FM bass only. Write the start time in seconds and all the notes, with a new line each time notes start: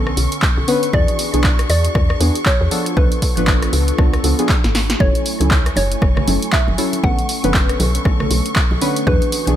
Already playing: B1
0.17 B1
0.58 B1
0.93 E2
1.34 B1
1.70 E2
1.95 E2
2.20 E2
2.61 E2
2.97 C#2
3.37 G#1
3.73 C#2
3.99 C#2
4.24 C#2
4.64 G#1
5.00 F#1
5.40 C#2
5.76 F#1
6.02 F#1
6.27 F#1
6.68 F#1
7.04 B1
7.44 F#1
7.80 B1
8.05 B1
8.31 B1
8.71 B1
9.07 E2
9.47 B1